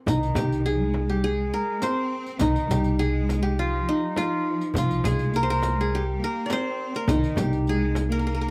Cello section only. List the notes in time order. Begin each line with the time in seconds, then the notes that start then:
0.09 D#3
0.65 G#3
1.12 G3
1.26 G#3
1.84 C4
2.41 D#3
2.70 G3
3.00 G#3
3.58 F3
4.10 G3
4.17 F3
4.76 F3
5.05 G#3
5.35 A#3
5.49 A#3
5.78 G#3
5.92 G3
6.21 A#3
6.50 C4
6.95 A#3
7.10 D#3
7.37 G3
7.66 G#3
8.10 A#3